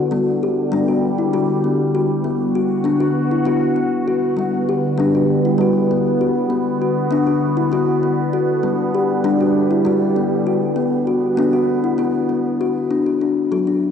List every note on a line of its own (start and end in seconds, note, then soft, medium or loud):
0.00 0.11 F#4 medium
0.10 2.21 D3 medium
0.10 2.22 G3 medium
0.10 0.34 G3 medium
0.10 10.72 B3 medium
0.10 0.42 B3 medium
0.43 0.73 G4 medium
0.72 1.18 G3 loud
0.72 0.88 D4 medium
0.88 1.18 F#4 medium
1.19 1.33 E4 medium
1.33 2.03 G3 medium
1.33 1.64 F#4 medium
1.64 1.94 B3 medium
1.95 2.25 F#4 medium
2.24 4.35 D3 medium
2.24 2.48 B3 medium
2.24 4.36 F#4 medium
2.55 2.86 F#4 medium
2.84 3.31 B3 medium
2.84 3.00 D4 medium
3.00 3.31 F#4 medium
3.31 3.46 E4 medium
3.46 3.75 B3 medium
3.46 3.77 F#4 medium
3.76 4.07 B3 medium
4.08 4.38 F#4 medium
4.37 12.86 D3 medium
4.37 4.60 G3 medium
4.37 6.48 G3 medium
4.37 4.68 B3 medium
4.69 4.99 G4 medium
4.98 5.44 G3 loud
4.98 5.14 D4 medium
5.15 5.45 F#4 medium
5.45 5.60 E4 medium
5.58 6.28 G3 medium
5.58 5.90 F#4 medium
5.91 6.21 B3 medium
6.21 6.51 F#4 medium
6.50 6.73 B3 medium
6.50 8.62 F#4 medium
6.81 7.11 F#4 medium
7.11 7.57 B3 loud
7.11 7.27 D4 medium
7.27 7.57 F#4 medium
7.57 7.72 E4 medium
7.72 8.02 B3 medium
7.72 8.03 F#4 medium
8.03 8.33 B3 medium
8.33 8.63 F#4 medium
8.63 8.86 G3 medium
8.63 10.75 G3 medium
8.63 8.94 B3 medium
8.94 9.25 G4 medium
9.24 9.70 G3 loud
9.24 9.40 D4 medium
9.41 9.71 F#4 medium
9.71 9.86 E4 medium
9.85 10.55 G3 medium
9.85 10.16 F#4 medium
10.16 10.46 B3 medium
10.47 10.77 F#4 medium
10.76 10.99 B3 medium
10.76 12.89 B3 medium
10.76 12.89 F#4 medium
11.07 11.38 F#4 medium
11.37 11.84 B3 loud
11.37 11.53 D4 medium
11.53 11.84 F#4 medium
11.84 11.99 E4 medium
11.98 12.28 B3 medium
11.98 12.29 F#4 medium
12.29 12.60 B3 medium
12.61 12.91 F#4 medium
12.90 13.37 B3 medium
12.90 13.06 D4 medium
13.06 13.21 F#4 medium
13.21 13.52 D4 medium
13.52 13.91 F#3 medium
13.52 13.67 F#4 medium
13.67 13.91 D4 medium